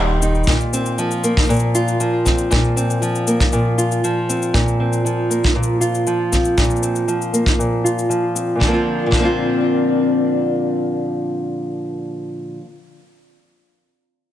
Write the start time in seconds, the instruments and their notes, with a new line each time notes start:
Already playing: sub bass D#1, nylon-string guitar D#3 G3 A#3 D#4 G4, ambient pad G4 D#5 C6
0.22 nylon-string guitar D#4, shaker
0.35 shaker
0.44 nylon-string guitar A#2, kick, shaker
0.48 ambient pad A#4 D5, shaker
0.52 shaker
0.61 shaker
0.73 nylon-string guitar C4, shaker
0.86 shaker
0.98 nylon-string guitar F3, shaker
1.11 shaker
1.24 nylon-string guitar A#3, shaker
1.37 kick, shaker
1.41 shaker
1.44 shaker
1.47 nylon-string guitar A#2, shaker
1.50 shaker
1.53 shaker
1.56 shaker
1.59 shaker
1.75 nylon-string guitar F4, shaker
1.88 shaker
2.00 nylon-string guitar F3, shaker
2.25 nylon-string guitar C4, kick, shaker
2.38 shaker
2.51 nylon-string guitar A#2, kick, shaker
2.64 shaker
2.76 nylon-string guitar C4, shaker
2.90 shaker
3.02 nylon-string guitar F3, shaker
3.15 shaker
3.27 nylon-string guitar A#3, shaker
3.40 kick, shaker
3.53 nylon-string guitar A#2, shaker
3.78 nylon-string guitar F4, shaker
3.92 shaker
4.04 nylon-string guitar F3, shaker
4.29 nylon-string guitar C4, shaker
4.42 shaker
4.54 nylon-string guitar A#2, ambient pad A#5, kick, shaker
4.68 shaker
4.80 nylon-string guitar C4
4.93 shaker
5.05 nylon-string guitar F3, shaker
5.30 nylon-string guitar A#3, shaker
5.44 kick, shaker
5.55 nylon-string guitar A#2
5.63 shaker
5.81 nylon-string guitar F4, shaker
5.95 shaker
6.07 nylon-string guitar F3, shaker
6.32 nylon-string guitar C4, kick, shaker
6.45 shaker
6.57 nylon-string guitar A#2, kick, shaker
6.64 shaker
6.70 shaker
6.76 shaker
6.83 nylon-string guitar C4, shaker
6.96 shaker
7.08 nylon-string guitar F3, shaker
7.22 shaker
7.33 nylon-string guitar A#3, shaker
7.46 kick, shaker
7.59 nylon-string guitar A#2, shaker
7.84 nylon-string guitar F4, shaker
7.99 shaker
8.09 nylon-string guitar F3, shaker
8.35 nylon-string guitar C4, shaker
8.55 nylon-string guitar A#2
8.60 nylon-string guitar D3 F3, ambient pad C4 A#4 D5, kick
8.67 nylon-string guitar A#3 C4
8.74 nylon-string guitar F4
9.06 nylon-string guitar A#2
9.11 nylon-string guitar D3 F3, kick
9.18 nylon-string guitar A#3 C4
9.25 nylon-string guitar F4